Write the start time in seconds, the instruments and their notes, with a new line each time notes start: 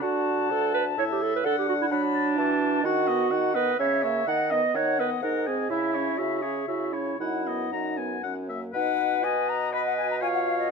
0.02 bassoon D3, french horn D4, clarinet F#4, oboe F#5, flute A5
0.50 bassoon D2, clarinet A4
0.74 clarinet B4
0.97 bassoon A2, french horn E4, clarinet C#5, oboe E5
1.11 clarinet G4
1.22 clarinet A4
1.36 clarinet B4
1.44 bassoon D3, french horn D4, clarinet A4, oboe F#5, flute F#5
1.58 clarinet G4
1.69 clarinet F#4
1.82 clarinet E4
1.91 bassoon F#3, clarinet D4, oboe F#5, flute B5
2.14 oboe A5
2.38 bassoon E3, french horn F#4, flute A5, oboe A5
2.83 bassoon D#3, french horn D#4, clarinet F#4, flute F#5, oboe F#5
3.07 french horn B3, oboe D#5
3.31 bassoon D#3, french horn D#4, oboe F#5, flute F#5
3.55 french horn B3, clarinet B4, oboe D#5
3.78 bassoon C#3, french horn C#4, clarinet C#5, oboe E5, flute E5
4.02 french horn A#3, oboe C#5, clarinet E5
4.27 bassoon D#3, french horn D#4, flute D#5, oboe F#5, clarinet F#5
4.50 french horn B3, oboe D#5, clarinet D#5
4.74 bassoon D#3, french horn D#4, clarinet C#5, oboe F#5, flute F#5
4.99 french horn B3, clarinet B4, oboe D#5
5.22 bassoon G#2, french horn D#4, clarinet A#4, flute D#5, oboe F#5
5.46 french horn C4, clarinet G#4, oboe G#5
5.70 bassoon C#3, clarinet E4, french horn E4, flute E5, oboe E5
5.94 french horn C#4, oboe C#5
6.18 bassoon C#3, french horn E4, clarinet F#4, oboe E5
6.42 french horn C#4, clarinet G#4, oboe C#5
6.67 bassoon C#3, french horn E4, clarinet F#4, oboe E5
6.93 french horn C#4, clarinet E4, oboe C#5
7.19 bassoon F#2, french horn D#4, clarinet E4, flute F#5, oboe F#5
7.47 french horn B3, oboe D#5
7.72 bassoon F#2, clarinet D#4, french horn D#4, oboe A#5
7.97 french horn B3, oboe G#5
8.23 bassoon F#2, french horn C#4, oboe F#5
8.49 french horn A#3, oboe E5
8.73 bassoon B2, french horn D#4, oboe B4, clarinet B4, flute F#5
9.24 french horn F#4, oboe D#5, flute G#5
9.49 flute A#5
9.73 oboe B4, clarinet D#5, flute B5
9.86 flute F#5
9.97 flute G#5
10.11 flute A#5
10.21 french horn F4, oboe C#5, clarinet F5, flute G#5
10.34 flute F#5
10.45 flute F5
10.59 flute D#5